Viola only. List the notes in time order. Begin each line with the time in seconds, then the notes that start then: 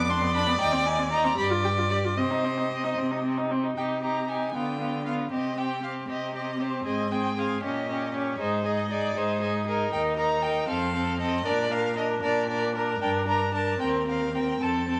Already playing: B3
0.09 D4
0.22 B3
0.35 D4
0.47 B3
0.60 D#4
0.73 C4
0.86 D#4
0.98 C4
1.11 D#4
1.24 C4
1.37 G4
1.50 F4
1.64 G4
1.78 F4
1.91 G4
2.05 F4
2.18 C4
2.31 D#4
2.44 C4
2.58 D#4
2.71 C4
2.84 D#4
2.98 C4
3.11 D#4
3.24 C4
3.37 D#4
3.51 C4
3.64 D#4
3.77 D#4
4.03 D#4
4.29 D#4
4.55 B3
4.81 B3
5.06 B3
5.32 C4
5.58 C4
5.83 C4
6.09 C4
6.35 C4
6.61 C4
6.86 C4
7.12 C4
7.38 C4
7.64 C#4
7.89 C#4
8.15 C#4
8.39 D#4
8.65 D#4
8.90 D#4
9.16 D#4
9.41 D#4
9.67 D#4
9.93 D#4
10.18 D#4
10.44 D#4
10.69 C4
10.95 C4
11.20 C4
11.46 D4
11.71 D4
11.97 D4
12.23 D4
12.49 D4
12.76 D4
13.01 D4
13.27 D4
13.54 D4
13.80 C4
14.07 C4
14.34 C4
14.61 C4
14.88 C4